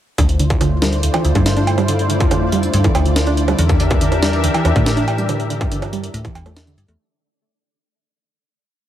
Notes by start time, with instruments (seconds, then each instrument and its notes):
0.18 fm bass D2, synth arpeggio sound D3, analog synth pad D3 A3 E4 F4 C5, synth texture D4 D5, kick, closed hi-hat
0.29 closed hi-hat
0.40 synth arpeggio sound D3, closed hi-hat
0.50 kick, closed hi-hat
0.61 synth arpeggio sound D3, closed hi-hat, high bongo
0.82 synth arpeggio sound G3, snare, closed hi-hat
0.93 closed hi-hat
1.03 synth arpeggio sound D2, closed hi-hat
1.14 synth arpeggio sound E3, closed hi-hat, cowbell, high bongo
1.25 fm bass D2, closed hi-hat
1.35 fm bass G2, synth arpeggio sound D3, kick, closed hi-hat
1.46 snare, closed hi-hat
1.57 synth arpeggio sound D4, closed hi-hat
1.67 closed hi-hat, cowbell
1.78 synth arpeggio sound G3, closed hi-hat, high bongo
1.88 synth arpeggio sound D3, closed hi-hat
1.99 closed hi-hat
2.10 synth arpeggio sound D3, closed hi-hat
2.20 fm bass F2, kick, closed hi-hat
2.31 synth arpeggio sound D3, closed hi-hat, high bongo
2.52 synth arpeggio sound G3, closed hi-hat
2.63 closed hi-hat
2.73 synth arpeggio sound D2, fm bass G2, closed hi-hat
2.84 synth arpeggio sound E3, kick, closed hi-hat
2.95 fm bass D2, closed hi-hat, cowbell, high bongo
3.06 synth arpeggio sound D3, closed hi-hat
3.16 snare, closed hi-hat
3.27 synth arpeggio sound D4, closed hi-hat
3.37 closed hi-hat
3.48 synth arpeggio sound G3, closed hi-hat, high bongo
3.59 fm bass E2, synth arpeggio sound D3, analog synth pad E3 D4 G4 A#4 E5, closed hi-hat
3.69 kick, closed hi-hat
3.80 synth arpeggio sound D3, closed hi-hat
3.91 kick, closed hi-hat
4.01 synth arpeggio sound D3, closed hi-hat
4.12 closed hi-hat, high bongo
4.23 synth arpeggio sound G3, snare, closed hi-hat
4.33 closed hi-hat
4.44 synth arpeggio sound D2, closed hi-hat
4.54 synth arpeggio sound E3, closed hi-hat, cowbell
4.65 fm bass E2, closed hi-hat, high bongo
4.76 fm bass A2, synth arpeggio sound D3, kick, closed hi-hat
4.86 snare, closed hi-hat
4.97 synth arpeggio sound D4, closed hi-hat
5.08 closed hi-hat, cowbell
5.18 synth arpeggio sound G3, closed hi-hat
5.29 synth arpeggio sound D3, closed hi-hat, high bongo
5.40 closed hi-hat
5.50 synth arpeggio sound D3, closed hi-hat
5.61 fm bass G2, kick, closed hi-hat
5.71 synth arpeggio sound D3, closed hi-hat
5.82 closed hi-hat, high bongo
5.93 synth arpeggio sound G3, closed hi-hat
6.04 closed hi-hat
6.14 synth arpeggio sound D2, fm bass A2, closed hi-hat
6.25 synth arpeggio sound E3, kick, closed hi-hat
6.35 fm bass E2, closed hi-hat, cowbell
6.46 synth arpeggio sound A3, closed hi-hat, high bongo
6.57 snare, closed hi-hat
6.67 synth arpeggio sound D3, closed hi-hat
6.78 fm bass G2, closed hi-hat
6.88 fm bass E2, synth arpeggio sound A3, closed hi-hat